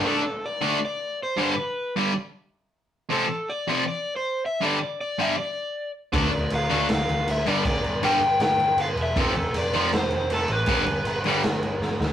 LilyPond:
<<
  \new Staff \with { instrumentName = "Overdriven electric guitar" } { \time 4/4 \key g \mixolydian \tempo 4 = 158 a'4 d''4 d''4 c''8 b'8~ | b'4 r2. | a'4 d''4 d''8. c''8. e''8 | d''4 d''8 e''8 d''4. r8 |
d''4 f''4 f''4 e''8 d''8 | d''4 g''4 g''4 f''8 e''8 | a'4 d''4 c''4 a'8 b'8~ | b'2. r4 | }
  \new Staff \with { instrumentName = "Distorted electric guitar" } { \clef bass \time 4/4 \key g \mixolydian <d a d'>8 r4 <d a d'>8 r4. <g, d g>8 | r4 <g, d g>8 r2 r8 | <f, c f>8 r4 <f, c f>8 r2 | <g, d g>8 r4 <g, d g>8 r2 |
<d a d'>8 r4 <d a d'>8 r4. <g, d g>8 | r4 <g, d g>8 r2 r8 | <f, c f>8 r4 <f, c f>8 r2 | <g, d g>8 r4 <g, d g>8 r2 | }
  \new Staff \with { instrumentName = "Picked electric bass" } { \clef bass \time 4/4 \key g \mixolydian r1 | r1 | r1 | r1 |
d,8 d,8 d,8 d,8 d,8 d,8 d,8 g,,8 | g,,8 g,,8 g,,8 g,,8 g,,8 g,,8 g,,8 e,,8 | f,,8 f,,8 f,,8 f,,8 f,,8 f,,8 f,,8 a,,8 | g,,8 g,,8 g,,8 g,,8 g,,8 g,,8 g,,8 d,8 | }
  \new DrumStaff \with { instrumentName = "Drums" } \drummode { \time 4/4 r4 r4 r4 r4 | r4 r4 r4 r4 | r4 r4 r4 r4 | r4 r4 r4 r4 |
<cymc bd>8 cymc8 cymc8 cymc8 <cymc sn>8 cymc8 cymc8 cymc8 | <cymc bd>8 cymc8 cymc8 cymc8 <cymc sn>8 cymc8 cymc8 cymc8 | <cymc bd>8 cymc8 cymc8 cymc8 <cymc sn>8 cymc8 cymc8 cymc8 | <cymc bd>8 cymc8 cymc8 cymc8 <cymc sn>8 cymc8 sn8 sn8 | }
>>